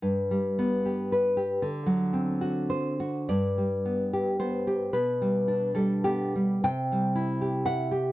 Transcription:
\new Staff \with { instrumentName = "Nylon-string guitar" } { \time 3/4 \key g \major \tempo 4 = 111 << { r2. | r2. | d''2 c''4 | b'4. a'8 g'4 |
g''2 fis''4 | } \\ { g,8 g8 b8 g'8 b'8 g'8 | d8 fis8 c'8 fis'8 c''8 fis'8 | g,8 g8 b8 g'8 b8 g'8 | b,8 g8 d'8 g8 b8 g8 |
c8 g8 e'8 g'8 e''8 g'8 | } >> }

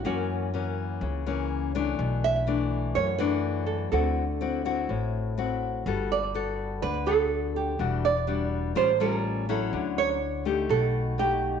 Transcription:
<<
  \new Staff \with { instrumentName = "Nylon-string guitar" } { \time 4/4 \key d \major \tempo 4 = 124 fis'2 r2 | r8 e''4. cis''8 b'4 a'8 | a'2 r2 | r8 d''4. b'8 a'4 g'8 |
r8 d''4. c''8 bes'4 a'8 | r8 cis''4 r8 a'4 g'4 | }
  \new Staff \with { instrumentName = "Nylon-string guitar" } { \time 4/4 \key d \major << { <e ais cis'>4 <e ais cis'>4. <e ais cis'>4 <e a d'>8~ | <e a d'>4 <e a d'>4. <e a d'>4. | <c' e' fis'>8 r8 <c' e' fis'>8 <c' e' fis'>4. <c' e' fis'>4 | <b fis' a'>8 r8 <b fis' a'>4 r8 <b fis' a'>4. |
<g d' fis'>8 r8 <g d' fis'>4 <g cis' f'>8 <g cis' f'>4 <fis cis' e'>8~ | <fis cis' e'>4 r8 <a ees' g'>4. <a dis' g'>4 | } \\ { fis,2 cis2 | b,2 fis,2 | d2 a,2 | g2 d2 |
e2 a,2 | d2 b,2 | } >> }
  \new Staff \with { instrumentName = "Upright bass" } { \clef bass \time 4/4 \key d \major fis,2 cis,2 | b,,2 fis,2 | d,2 a,,2 | g,,2 d,2 |
e,,2 a,,2 | d,2 b,,2 | }
>>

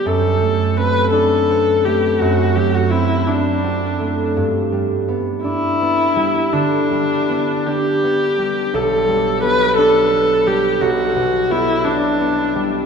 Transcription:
<<
  \new Staff \with { instrumentName = "Viola" } { \time 12/8 \key g \major \tempo 4. = 56 a'4 b'8 a'4 g'8 fis'8 g'16 fis'16 e'8 d'4. | r4. e'4. d'4. g'4. | a'4 b'8 a'4 g'8 fis'4 e'8 d'4. | }
  \new Staff \with { instrumentName = "Harp" } { \time 12/8 \key g \major <fis, d'>8 a8 c'8 d'8 c'8 a8 fis,8 fis8 c'8 d'8 c'8 a8 | g,8 g8 b8 d'8 b8 g8 d8 g8 b8 d'8 b8 g8 | b,,8 g8 b8 d'8 b8 g8 b,,8 b,8 b8 d'8 b8 g8 | }
>>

